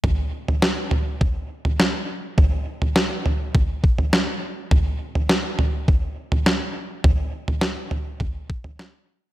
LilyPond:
\new DrumStaff \with { instrumentName = "Drums" } \drummode { \time 4/4 \tempo 4 = 103 <bd tomfh>8. tomfh16 sn8 tomfh8 <bd tomfh>8. tomfh16 sn4 | <bd tomfh>8. tomfh16 sn8 tomfh8 <bd tomfh>8 bd16 tomfh16 sn4 | <bd tomfh>8. tomfh16 sn8 tomfh8 <bd tomfh>8. tomfh16 sn4 | <bd tomfh>8. tomfh16 sn8 tomfh8 <bd tomfh>8 bd16 tomfh16 sn4 | }